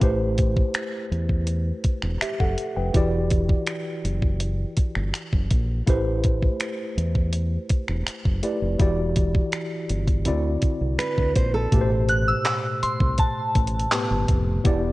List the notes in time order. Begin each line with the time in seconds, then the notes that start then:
0.00 A1 A3 E4 G4 B4 C5, kick, closed hi-hat
0.38 kick, closed hi-hat
0.57 kick
0.74 finger snap, closed hi-hat
1.12 E2, closed hi-hat
1.29 kick
1.47 closed hi-hat
1.84 muted fingered electric bass stroke, kick, closed hi-hat
2.02 E1, finger snap
2.21 G4 E5, finger snap, muted fingered electric bass stroke, closed hi-hat
2.40 F#1 A4 F#5, kick
2.58 closed hi-hat
2.76 F1 B4 G5
2.93 E1 E3 E4 F#4 G4 D5, kick, closed hi-hat
3.30 kick, closed hi-hat
3.49 kick
3.67 finger snap, closed hi-hat
4.04 F#1, closed hi-hat
4.22 kick
4.40 closed hi-hat
4.77 muted fingered electric bass stroke, kick, closed hi-hat
4.95 G1, finger snap
5.14 finger snap, closed hi-hat
5.33 F#1, kick
5.50 A#1, kick, closed hi-hat
5.86 A1 A3 E4 G4 B4 C5, kick, closed hi-hat
6.23 kick, closed hi-hat
6.42 kick
6.59 finger snap, closed hi-hat
6.97 E2, closed hi-hat
7.15 kick
7.32 closed hi-hat
7.69 muted fingered electric bass stroke, kick, closed hi-hat
7.88 E1, finger snap
8.07 finger snap, closed hi-hat
8.25 F#1, kick
8.43 A3 E4 G4 B4 D5, closed hi-hat
8.62 F1
8.79 E1 E3 E4 F#4 G4 D5, kick, closed hi-hat
9.16 kick, closed hi-hat
9.35 kick
9.52 finger snap, closed hi-hat
9.90 G1, closed hi-hat
10.08 kick, closed hi-hat
10.25 D2 D3 C4 E4 F#4 D5, closed hi-hat
10.62 muted fingered electric bass stroke, kick, closed hi-hat
10.81 C2
10.99 B4, finger snap, closed hi-hat
11.18 D2, kick
11.36 A#1 C5, kick, closed hi-hat
11.54 A4
11.71 A1 A2 B2 A3 G4 B4, kick, closed hi-hat
11.81 C5
12.09 F#6, closed hi-hat
12.28 E6
12.45 clap, closed hi-hat
12.83 C6, muted fingered electric bass stroke, closed hi-hat
13.00 C2, kick
13.18 A5, kick, closed hi-hat
13.55 A1, kick, closed hi-hat
13.67 closed hi-hat
13.80 closed hi-hat
13.91 A2 A3 B3 G4 B4, clap, closed hi-hat
14.11 G1
14.28 F1, kick, closed hi-hat
14.64 E1 E3 B3 E4 G4 D5, kick, closed hi-hat